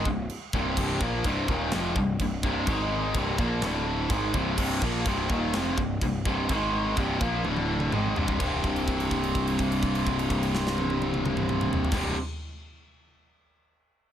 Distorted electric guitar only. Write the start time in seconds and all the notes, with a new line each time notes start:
0.06 C2 G2
0.54 C2 G2 C3
0.78 C2 G2 C3
1.01 A#2 F3 A#3
1.25 C2 G2 C3
1.49 D#2 A#2 D#3
1.73 F2 C3 F3
1.97 C2 G2
2.22 C2 G2
2.44 C2 G2 C3
2.67 G#2 D#3 G#3
3.15 C2 G2 C3
3.38 A#2 F3 A#3
3.63 D2 A2 D3
4.10 G#2 D#3 G#3
4.34 C2 G2 C3
4.58 C2 G2 C3
4.82 A#2 F3 A#3
5.06 C2 G2 C3
5.30 D#2 A#2 D#3
5.54 F2 C3 F3
5.78 C2 G2
6.03 C2 G2
6.26 C2 G2 C3
6.50 G#2 D#3 G#3
6.97 C2 G2 C3
7.21 A#2 F3 A#3
7.45 D2 A2 D3
7.92 G#2 D#3 G#3
8.17 C2 G2 C3
8.38 C2 G2
8.43 C3
11.91 C2 G2 C3